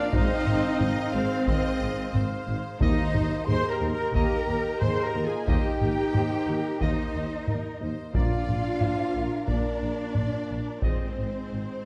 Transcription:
Already playing: woodwind section A#3 F4 F5, french horn section A#3, viola section D4, cello section D4, flute D5, violin section D5, trumpet F5
0.11 double bass section G#1, trombone section D#3 C4, woodwind section C4 D#4 G#4, french horn section C4, cello section D#4, viola section D#4, violin section C5 D#5, flute D#5, taiko
0.15 tuba G#1
0.46 double bass section G#1, tuba G#1, taiko low-mid
0.80 double bass section G#1, tuba G#1, violin section D#5, taiko low-mid
1.12 tuba G#1, double bass section G#1, french horn section G#3, cello section C4, viola section C4, violin section C5 F5, flute C5
1.47 double bass section G#1, tuba G#1, violin section D#5, taiko
1.80 tuba G#1, double bass section G#1
2.14 tuba G#1, double bass section G#1, violin section C5, taiko low-mid
2.47 tuba G#1, double bass section G#1
2.79 tuba D#2, double bass section D#2, trombone section D#3 A#3, timpani D#3, french horn section A#3, woodwind section A#3 D#4 A#4 D#5, cello section D#4, viola section D#4, violin section C5 D#5, flute D#5, trumpet D#5, taiko
3.14 tuba D#2, double bass section D#2, taiko low-mid
3.45 tuba D#2, double bass section D#2, french horn section G#4, violin section A#4 C6, cello section C5, viola section C5, flute C6, taiko low-mid
3.69 french horn section G4, cello section A#4, viola section A#4, flute A#5, violin section A#5
3.81 tuba D#2, double bass section D#2
3.91 french horn section G4, viola section A#4, cello section A#4, violin section A#5, flute A#5
4.13 double bass section D#2, tuba D#2, trombone section D#3 A#3, violin section G4 A#5, french horn section G4, cello section A#4, viola section A#4, trumpet D#5, flute A#5, taiko
4.46 tuba D#2, double bass section D#2, violin section G4
4.78 tuba D#2, double bass section D#2, french horn section G#4, violin section A#4 C6, viola section C5, cello section C5, flute C6, taiko low-mid
5.02 french horn section G4, viola section A#4, cello section A#4, flute A#5, violin section A#5
5.15 tuba D#2, double bass section D#2
5.24 french horn section F4, viola section G#4, cello section G#4, violin section G#5, flute G#5
5.45 tuba D#2, double bass section D#2, trombone section D#3 A#3, french horn section D#4, cello section G4, viola section G4, violin section C5, trumpet D#5, flute G5, taiko
5.49 violin section G5
5.81 double bass section D#2, tuba D#2, violin section A#4, taiko low-mid
6.13 tuba D#2, double bass section D#2, violin section C5, taiko low-mid
6.46 double bass section D#2, tuba D#2, violin section A#4
6.79 double bass section D#2, tuba D#2, trombone section D#3 A#3, french horn section A#3, cello section D#4, viola section D#4, violin section C5 D#5, trumpet D#5, flute D#5, taiko
7.15 double bass section D#2, tuba D#2
7.47 tuba D#2, double bass section D#2, violin section A#4, taiko low-mid
7.81 double bass section D#2, tuba D#2, violin section C5
8.14 double bass section A#1, tuba A#1, timpani A#2, trombone section F3 A#3, woodwind section A#3 F4 A#4 D5, french horn section D4, viola section F4, cello section F4, trumpet D5, violin section D5 F5, flute F5, taiko
8.49 tuba A#1, double bass section A#1, taiko low-mid
8.81 tuba A#1, double bass section A#1, violin section C5, taiko low-mid
9.15 double bass section A#1, tuba A#1, violin section A#4
9.46 double bass section A#1, tuba A#1, trombone section F3 A#3, french horn section A#3, cello section D4, viola section D4, violin section D5, flute D5, trumpet D5, taiko
9.82 double bass section A#1, tuba A#1
10.15 double bass section A#1, tuba A#1, violin section D5, taiko low-mid
10.49 tuba A#1, double bass section A#1, violin section A#4
10.81 tuba G#1, double bass section G#1, trombone section F3 G#3, french horn section G#3, cello section C4, viola section C4, woodwind section D#4 G#4 D#5, violin section C5, flute C5, trumpet D#5, taiko
11.17 tuba G#1, double bass section G#1
11.51 tuba G#1, double bass section G#1

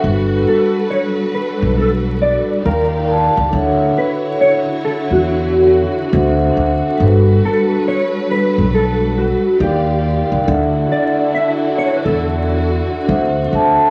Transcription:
Already playing: string section F#4
0.01 upright bass G1, vibraphone G3 D4 F#4, string section G3 A4 B4
0.05 vibraphone A4 B4
0.49 clean electric guitar A4
0.91 clean electric guitar C#5
1.35 clean electric guitar B4
1.62 upright bass B1
1.78 clean electric guitar A4
2.22 clean electric guitar D5
2.61 string section D#3 F4 G4 D5, vibraphone D#4 A#4 D5
2.65 upright bass D#2, clean electric guitar A#4, vibraphone F5 G5
3.04 vibraphone D#4 A#4 D5
3.09 vibraphone F5 A5
3.37 upright bass C#2
3.48 string section D3 E4 F#4 C#5, vibraphone D4 A4 C#5
3.52 upright bass D2, vibraphone E5 F#5
3.98 clean electric guitar B4
4.41 clean electric guitar C#5
4.85 clean electric guitar A4
5.11 upright bass E2, clean electric guitar F#4
6.10 upright bass D2, string section C4, vibraphone D4 A4 C5
6.14 vibraphone E5 F#5
6.53 upright bass D2, vibraphone D4 A4 C5
6.57 vibraphone E5 F#5
6.96 upright bass G1, vibraphone G3 D4 F#4, string section G3 A4 B4
7.01 vibraphone A4 B4
7.45 clean electric guitar A4
7.88 clean electric guitar C#5
8.31 clean electric guitar B4
8.58 upright bass B1
8.74 clean electric guitar A4
9.18 clean electric guitar F#4
9.57 upright bass D#2, string section D#3 F4 G4 D5, vibraphone D#4 A#4 D5, clean electric guitar G4
9.62 vibraphone F5 G5
10.01 vibraphone D#4 A#4 D5
10.05 vibraphone F5 G5
10.32 upright bass C#2
10.44 upright bass D2, string section D3 D4 E4 F#4, vibraphone D4 A4 D5
10.49 vibraphone E5 F#5
10.92 clean electric guitar D5
11.35 clean electric guitar E5
11.78 clean electric guitar C#5
11.96 clean electric guitar B4
12.05 upright bass E2, clean electric guitar A4
13.05 upright bass D2, string section C4, vibraphone D4 A4 C5
13.09 vibraphone E5 F#5
13.48 vibraphone D4 A4 C5
13.52 upright bass D2, vibraphone E5 A5

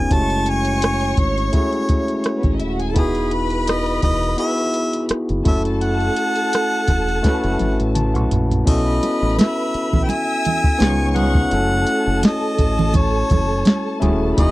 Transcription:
Already playing: tine electric piano B3 C#4 D#4 F4 G#4, harmonica G#5
0.10 fingered electric bass F#1, tine electric piano A3 C#4 E4 F#4 G4, string section C#5 C#6, harmonica A5, kick, closed hi-hat
0.19 tine electric piano G#3
0.30 closed hi-hat
0.46 harmonica G#5, closed hi-hat
0.65 closed hi-hat
0.82 cross-stick, closed hi-hat
1.01 closed hi-hat
1.17 fingered electric bass G#1, harmonica C#5, kick, closed hi-hat
1.38 closed hi-hat
1.52 tine electric piano A3 C#4 E4 F#4 G#4, kick, closed hi-hat
1.73 closed hi-hat
1.89 kick, closed hi-hat
2.08 closed hi-hat
2.24 cross-stick, closed hi-hat
2.35 string section B3 B4
2.43 fingered electric bass A1, string section C#4 C#5, kick, closed hi-hat
2.52 string section D#4 D#5
2.60 fingered electric bass D#1, string section E4 E5, closed hi-hat
2.70 string section F#4 F#5
2.80 string section G#4 G#5, closed hi-hat
2.89 string section A4 A5
2.94 fingered electric bass E1, tine electric piano B3 D#4 E4 F#4 G#4, harmonica G#4, string section B4 B5, kick, closed hi-hat
3.15 closed hi-hat
3.31 harmonica B4, closed hi-hat
3.50 closed hi-hat
3.67 harmonica D#5, cross-stick, closed hi-hat
3.86 closed hi-hat
4.02 fingered electric bass E1, harmonica D#5, kick, cross-stick, closed hi-hat
4.23 closed hi-hat
4.37 tine electric piano B3 E4 F#4 G#4, harmonica E5, closed hi-hat
4.58 closed hi-hat
4.74 closed hi-hat
4.93 closed hi-hat
5.09 muted fingered electric bass stroke, cross-stick, closed hi-hat
5.29 fingered electric bass F#1, closed hi-hat
5.44 fingered electric bass F#1, tine electric piano A3 C#4 E4 F#4 A4, string section A4 A5, harmonica E5, kick, closed hi-hat
5.65 closed hi-hat
5.81 harmonica F#5, closed hi-hat
6.00 closed hi-hat
6.16 closed hi-hat
6.36 closed hi-hat
6.53 cross-stick, closed hi-hat
6.88 fingered electric bass E1, kick, cross-stick, closed hi-hat
7.08 closed hi-hat
7.23 tine electric piano A3 C#4 E4 F#4 B4, kick, snare, closed hi-hat
7.44 fingered electric bass F#1, closed hi-hat
7.59 fingered electric bass G#1, closed hi-hat, high tom
7.80 fingered electric bass A1, closed hi-hat
7.95 tine electric piano A5, closed hi-hat, mid tom
8.14 fingered electric bass B1, tine electric piano F#5, closed hi-hat, mid tom
8.31 fingered electric bass A#1, closed hi-hat, floor tom
8.51 closed hi-hat, floor tom
8.65 fingered electric bass B1, tine electric piano B3 C#4 E4 F#4 A4, string section B4 B5, harmonica D#5, kick, closed hi-hat, crash
9.03 closed hi-hat, muted conga
9.23 fingered electric bass A1
9.39 harmonica E5, snare, closed hi-hat, high conga
9.74 muted fingered electric bass stroke, closed hi-hat
9.93 fingered electric bass B1, kick, low conga
10.04 harmonica G5
10.08 string section E5 E6, harmonica G#5, closed hi-hat, muted conga
10.45 closed hi-hat, muted conga, low conga
10.64 kick
10.78 fingered electric bass C#2, tine electric piano B3 C#4 D#4 F4 G#4, string section C#5 C#6, snare, closed hi-hat, high conga
11.10 tine electric piano B3, harmonica G#5
11.15 tine electric piano C#4 D#4 F4 G#4, harmonica F#5, closed hi-hat, high conga
11.35 kick
11.50 fingered electric bass F#1, tine electric piano A3 C#4 E4 F#4 A4, string section A4 A5, closed hi-hat
11.87 closed hi-hat
12.07 fingered electric bass F#1
12.23 harmonica D#5, snare, closed hi-hat, high conga
12.59 fingered electric bass A1, kick, closed hi-hat
12.79 low conga
12.94 harmonica C#5, kick, closed hi-hat, muted conga, low conga
13.30 fingered electric bass F#1, kick, closed hi-hat, muted conga, low conga
13.65 snare, closed hi-hat, high conga
14.00 fingered electric bass D#1, tine electric piano A3 C#4 E4 F#4 G#4, kick, closed hi-hat, high conga
14.36 fingered electric bass E1, tine electric piano B3 D#4 E4 F#4 G#4, string section B4 B5, harmonica D#5, kick, closed hi-hat

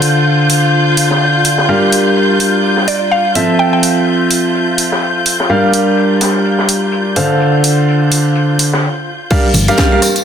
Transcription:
Already playing: upright piano D3 D4 A4 C5 F5, string section F4 G6
0.02 open hi-hat
0.26 closed hi-hat
0.49 closed hi-hat, open hi-hat
0.73 closed hi-hat
0.97 open hi-hat
1.11 snare
1.21 closed hi-hat
1.45 closed hi-hat, open hi-hat
1.58 snare
1.69 upright piano G3 D4 G4 A#4 F5, closed hi-hat
1.92 closed hi-hat, open hi-hat
2.16 closed hi-hat
2.40 closed hi-hat, open hi-hat
2.54 closed hi-hat
2.64 closed hi-hat
2.77 snare
2.88 synth pluck D5, open hi-hat
3.11 synth pluck F5, closed hi-hat
3.35 upright piano F3 C4 F4 A4 E5, open hi-hat
3.59 synth pluck G5, closed hi-hat
3.73 synth pluck G5
3.83 closed hi-hat, open hi-hat
4.07 closed hi-hat
4.31 open hi-hat
4.54 closed hi-hat
4.78 closed hi-hat, open hi-hat
4.92 snare
5.02 closed hi-hat
5.25 closed hi-hat, open hi-hat
5.40 snare
5.49 upright piano G3 D4 G4 A#4 F5, closed hi-hat
5.73 closed hi-hat, open hi-hat
5.97 closed hi-hat
6.21 snare, closed hi-hat, open hi-hat
6.45 closed hi-hat
6.59 snare
6.69 closed hi-hat, open hi-hat
6.92 closed hi-hat
7.16 upright piano D3 D4 A4 C5 F5, closed hi-hat, open hi-hat
7.40 closed hi-hat
7.64 closed hi-hat, open hi-hat
7.88 closed hi-hat
8.12 closed hi-hat, open hi-hat
8.35 closed hi-hat
8.59 closed hi-hat, open hi-hat
8.73 snare
9.30 upright piano G3 D4 G4 A#4 F5, kick, closed hi-hat, crash, tambourine
9.54 fingered electric bass G1, closed hi-hat, open hi-hat, tambourine, high conga
9.68 upright piano G3 D4 G4 A#4 F5, closed hi-hat, tambourine
9.77 upright piano G3 D4 G4 A#4 F5, kick, snare, closed hi-hat, tambourine
9.92 upright piano G3 D4 G4 A#4 F5
10.02 cross-stick, closed hi-hat, open hi-hat, tambourine
10.15 closed hi-hat, tambourine

